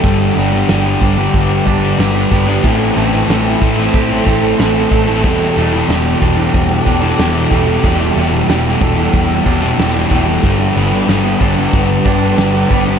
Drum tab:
HH |o-o-o-o-|o-o-o-o-|o-o-o-o-|o-o-o-o-|
SD |--o---o-|--o---o-|--o---o-|--o---o-|
BD |o--ooo-o|o--ooo-o|o--ooo-o|o--ooo-o|

HH |o-o-o-o-|
SD |--o---o-|
BD |o--ooo-o|